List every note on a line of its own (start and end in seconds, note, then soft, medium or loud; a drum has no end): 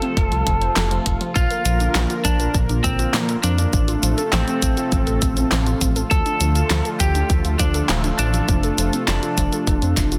0.00 1.33 C3 medium
0.00 6.07 F3 medium
0.00 1.32 A3 medium
0.00 0.11 C4 medium
0.00 3.69 F4 medium
0.00 1.24 A4 loud
0.00 1.32 A4 medium
0.00 closed hi-hat soft
0.17 0.28 F1 medium
0.17 0.26 F3 medium
0.17 kick loud
0.17 closed hi-hat medium
0.32 0.43 C2 medium
0.32 0.41 F4 medium
0.32 closed hi-hat soft
0.47 0.69 F1 medium
0.47 0.56 F3 loud
0.47 kick loud
0.47 closed hi-hat medium
0.62 0.70 C5 medium
0.62 closed hi-hat soft
0.76 0.99 F1 loud
0.76 0.82 A4 medium
0.76 snare loud
0.76 clap medium
0.76 closed hi-hat medium
0.91 1.00 F3 loud
0.91 closed hi-hat soft
1.06 1.17 F1 medium
1.06 1.11 F4 medium
1.06 kick medium
1.06 closed hi-hat medium
1.21 1.34 F3 loud
1.21 closed hi-hat soft
1.36 1.47 A#1 loud
1.36 3.71 D3 medium
1.36 1.45 F3 loud
1.36 3.71 A#3 medium
1.36 2.13 F4 loud
1.36 3.71 A#4 medium
1.36 kick loud
1.36 closed hi-hat medium
1.36 cabasa soft
1.51 1.59 A#4 medium
1.51 closed hi-hat soft
1.51 cabasa soft
1.65 1.88 A#1 loud
1.65 1.79 F3 medium
1.65 closed hi-hat medium
1.65 cabasa medium
1.80 1.89 D4 medium
1.80 closed hi-hat soft
1.80 cabasa soft
1.95 2.06 A#1 medium
1.95 2.04 F3 medium
1.95 snare loud
1.95 clap medium
1.95 closed hi-hat medium
1.95 cabasa soft
2.10 2.19 F4 medium
2.10 closed hi-hat soft
2.10 cabasa soft
2.25 2.47 A#1 loud
2.25 2.34 F3 loud
2.25 2.55 D4 medium
2.25 kick medium
2.25 closed hi-hat medium
2.25 cabasa medium
2.40 2.49 A#4 medium
2.40 closed hi-hat soft
2.40 cabasa soft
2.54 2.66 A#1 medium
2.54 2.68 F3 medium
2.54 kick loud
2.54 closed hi-hat medium
2.54 cabasa soft
2.69 2.81 A#1 medium
2.69 2.78 D4 medium
2.69 closed hi-hat soft
2.69 cabasa soft
2.84 3.07 A#1 medium
2.84 2.93 F3 medium
2.84 3.15 C4 medium
2.84 kick loud
2.84 closed hi-hat medium
2.84 cabasa medium
2.99 3.08 F4 medium
2.99 closed hi-hat soft
2.99 cabasa soft
3.14 3.36 A#2 medium
3.14 3.23 F3 loud
3.14 snare loud
3.14 clap medium
3.14 closed hi-hat medium
3.14 cabasa soft
3.29 3.38 A#4 medium
3.29 closed hi-hat soft
3.29 cabasa soft
3.43 3.66 F2 loud
3.43 3.57 F3 medium
3.43 4.21 D4 medium
3.43 closed hi-hat medium
3.43 cabasa medium
3.58 3.67 D4 medium
3.58 closed hi-hat soft
3.58 cabasa soft
3.73 3.96 A1 loud
3.73 6.09 C3 medium
3.73 3.82 F3 medium
3.73 6.09 A3 medium
3.73 10.19 F4 medium
3.73 6.09 A4 medium
3.73 kick loud
3.73 closed hi-hat medium
3.73 cabasa soft
3.88 3.97 F4 medium
3.88 closed hi-hat soft
3.88 cabasa soft
4.03 4.14 A1 medium
4.03 4.12 F3 loud
4.03 closed hi-hat medium
4.03 cabasa medium
4.18 4.27 A4 medium
4.18 closed hi-hat soft
4.18 cabasa soft
4.33 4.44 A1 loud
4.33 4.46 F3 medium
4.33 5.99 C4 loud
4.33 snare loud
4.33 clap loud
4.33 closed hi-hat medium
4.33 cabasa soft
4.48 4.56 C4 medium
4.48 closed hi-hat soft
4.48 cabasa soft
4.62 4.74 A1 loud
4.62 4.71 F3 medium
4.62 kick medium
4.62 closed hi-hat loud
4.62 cabasa medium
4.77 4.86 F4 medium
4.77 closed hi-hat soft
4.77 cabasa soft
4.92 5.03 A1 loud
4.92 5.01 F3 loud
4.92 kick loud
4.92 closed hi-hat medium
4.92 cabasa soft
5.07 5.18 A1 loud
5.07 5.16 A4 medium
5.07 closed hi-hat soft
5.07 cabasa soft
5.22 5.44 A1 loud
5.22 5.35 F3 medium
5.22 kick loud
5.22 closed hi-hat medium
5.22 cabasa medium
5.37 5.46 C4 medium
5.37 closed hi-hat soft
5.37 cabasa soft
5.52 5.74 A1 medium
5.52 5.60 F3 medium
5.52 snare loud
5.52 clap medium
5.52 closed hi-hat medium
5.52 cabasa soft
5.66 5.75 F4 medium
5.66 closed hi-hat soft
5.66 cabasa soft
5.81 6.04 A1 medium
5.81 5.90 F3 loud
5.81 kick medium
5.81 closed hi-hat medium
5.81 cabasa medium
5.96 6.05 A4 medium
5.96 closed hi-hat soft
5.96 cabasa soft
6.11 6.22 D2 loud
6.11 8.46 D3 medium
6.11 6.24 F3 medium
6.11 10.19 F3 medium
6.11 10.19 A3 medium
6.11 6.88 A4 loud
6.11 10.19 A4 medium
6.11 kick loud
6.11 closed hi-hat medium
6.11 cabasa soft
6.26 6.35 D4 medium
6.26 closed hi-hat soft
6.26 cabasa soft
6.41 6.63 D2 loud
6.41 6.50 F3 medium
6.41 closed hi-hat medium
6.41 cabasa medium
6.55 6.64 F4 medium
6.55 closed hi-hat soft
6.55 cabasa soft
6.70 6.82 D2 loud
6.70 6.79 F3 loud
6.70 snare loud
6.70 clap loud
6.70 closed hi-hat medium
6.70 cabasa soft
6.85 6.94 A4 medium
6.85 closed hi-hat soft
6.85 cabasa soft
7.00 7.23 D2 loud
7.00 7.13 F3 medium
7.00 7.31 G4 medium
7.00 kick medium
7.00 closed hi-hat medium
7.00 cabasa medium
7.15 7.24 D4 medium
7.15 closed hi-hat soft
7.15 cabasa soft
7.30 7.41 D2 medium
7.30 7.39 F3 medium
7.30 kick loud
7.30 closed hi-hat medium
7.30 cabasa soft
7.45 7.56 D2 medium
7.45 7.54 F4 medium
7.45 closed hi-hat soft
7.45 cabasa soft
7.59 7.82 D2 medium
7.59 7.68 F3 loud
7.59 7.90 D4 medium
7.59 kick loud
7.59 closed hi-hat medium
7.59 cabasa medium
7.74 7.83 A4 medium
7.74 closed hi-hat soft
7.74 cabasa soft
7.89 8.12 D1 medium
7.89 8.03 F3 medium
7.89 snare loud
7.89 clap loud
7.89 closed hi-hat medium
7.89 cabasa soft
8.04 8.13 D4 medium
8.04 closed hi-hat soft
8.04 cabasa soft
8.19 8.41 A1 loud
8.19 8.28 F3 medium
8.19 8.96 D4 medium
8.19 closed hi-hat medium
8.19 cabasa medium
8.34 8.43 F4 medium
8.34 closed hi-hat soft
8.34 cabasa soft
8.49 8.71 F1 medium
8.49 10.19 C3 medium
8.49 8.58 F3 loud
8.49 kick loud
8.49 closed hi-hat medium
8.49 cabasa soft
8.63 8.72 A4 medium
8.63 closed hi-hat soft
8.63 cabasa soft
8.78 8.90 F1 medium
8.78 8.92 F3 medium
8.78 closed hi-hat loud
8.78 cabasa medium
8.93 9.02 C4 medium
8.93 closed hi-hat soft
8.93 cabasa soft
9.08 9.19 F1 medium
9.08 9.17 F3 medium
9.08 10.19 D4 medium
9.08 snare loud
9.08 clap loud
9.08 closed hi-hat medium
9.08 cabasa soft
9.23 9.32 F4 medium
9.23 closed hi-hat soft
9.23 cabasa soft
9.38 9.49 F1 medium
9.38 9.47 F3 loud
9.38 kick medium
9.38 closed hi-hat loud
9.38 cabasa medium
9.53 9.61 A4 medium
9.53 closed hi-hat soft
9.53 cabasa soft
9.67 9.79 F1 medium
9.67 9.81 F3 medium
9.67 kick loud
9.67 closed hi-hat medium
9.67 cabasa soft
9.82 9.94 F2 loud
9.82 9.91 C4 medium
9.82 closed hi-hat soft
9.82 cabasa soft
9.97 10.19 F1 loud
9.97 10.06 F3 medium
9.97 kick loud
9.97 snare medium
9.97 closed hi-hat medium
9.97 cabasa medium
10.12 10.19 F4 medium
10.12 closed hi-hat soft
10.12 cabasa soft